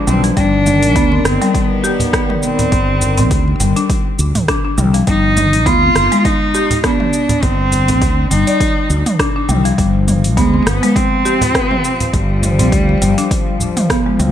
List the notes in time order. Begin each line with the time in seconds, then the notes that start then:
Already playing: F3 D4 B4
0.07 B1 G3 C4, mid tom, cabasa
0.24 F3, open hi-hat, cabasa
0.37 G1 D#3 G3 D4, kick, open hi-hat, cabasa
0.65 G3, mid tom, open hi-hat, high conga, cabasa
0.83 open hi-hat, cabasa
0.96 D2 B3, kick, open hi-hat, cabasa
1.12 C4, muted conga
1.24 G1 C4, cross-stick, open hi-hat, high conga, cabasa
1.41 G3, open hi-hat, cabasa
1.55 B3, kick, open hi-hat, cabasa
1.84 G4, cabasa
2.00 open hi-hat, muted conga, low conga, cabasa
2.13 B3, kick, cross-stick, open hi-hat, cabasa
2.30 mid tom, muted conga
2.43 C4, cabasa
2.59 open hi-hat, high conga, low conga, cabasa
2.72 G1, kick, open hi-hat, cabasa
3.01 open hi-hat, high conga, cabasa
3.18 C4, open hi-hat, high conga, low conga, cabasa
3.31 D2, kick, open hi-hat, cabasa
3.48 muted conga
3.60 G1 G3, open hi-hat, high conga, cabasa
3.76 D4, open hi-hat, muted conga, cabasa
3.90 kick, open hi-hat, cabasa
4.19 D2, muted conga, cabasa
4.35 mid tom, open hi-hat, low conga, cabasa
4.48 D4, kick, cross-stick, open hi-hat, cabasa
4.65 D4
4.78 C2 G3, mid tom, cabasa
4.94 F3, open hi-hat, cabasa
5.07 G1 G3 D#4, kick, open hi-hat, cabasa
5.37 mid tom, open hi-hat, high conga, cabasa
5.53 open hi-hat, cabasa
5.66 D2 B3 F4, kick, open hi-hat, cabasa
5.82 C4, muted conga
5.95 G1, cross-stick, open hi-hat, high conga, cabasa
6.12 G#3, open hi-hat, cabasa
6.25 D#4, kick, open hi-hat, cabasa
6.54 G4, cabasa
6.71 open hi-hat, muted conga, low conga, cabasa
6.84 B3 D4, kick, cross-stick, open hi-hat, cabasa
7.00 mid tom, muted conga
7.13 cabasa
7.29 open hi-hat, high conga, low conga, cabasa
7.43 G1 C4, kick, open hi-hat, cabasa
7.72 open hi-hat, high conga, cabasa
7.88 C4, open hi-hat, low conga, cabasa
8.02 D2, kick, open hi-hat, cabasa
8.31 G1 G3 D#4, open hi-hat, high conga, cabasa
8.47 D5, open hi-hat, muted conga, cabasa
8.60 kick, open hi-hat, cabasa
8.90 D2, muted conga, cabasa
9.06 mid tom, open hi-hat, cabasa
9.19 D4, kick, cross-stick, open hi-hat, cabasa
9.36 D4
9.49 C2 G3, mid tom, cabasa
9.65 F3, open hi-hat, cabasa
9.78 G1 F3 G3, kick, open hi-hat, cabasa
10.08 mid tom, open hi-hat, high conga, cabasa
10.24 open hi-hat, cabasa
10.37 D2 G#3 B3, kick, open hi-hat, cabasa
10.54 C4, muted conga
10.66 G1 B3, cross-stick, open hi-hat, high conga, cabasa
10.83 G#3, open hi-hat, cabasa
10.96 C4, kick, open hi-hat, cabasa
11.25 G4, cabasa
11.41 open hi-hat, muted conga, low conga, cabasa
11.55 B4, kick, cross-stick, open hi-hat, cabasa
11.71 mid tom, muted conga
11.84 cabasa
12.00 open hi-hat, high conga, low conga, cabasa
12.13 G1 G3, kick, open hi-hat, cabasa
12.43 mid tom, open hi-hat, high conga, cabasa
12.59 C4, open hi-hat, low conga, cabasa
12.72 D2, kick, open hi-hat, cabasa
12.89 muted conga
13.02 G1 G3, open hi-hat, high conga, cabasa
13.18 D4, open hi-hat, muted conga, cabasa
13.31 kick, open hi-hat, cabasa
13.60 muted conga, low conga, cabasa
13.77 mid tom, open hi-hat, cabasa
13.90 B3, kick, cross-stick, open hi-hat, cabasa
14.06 G#3
14.19 D2 G3, mid tom, open hi-hat, cabasa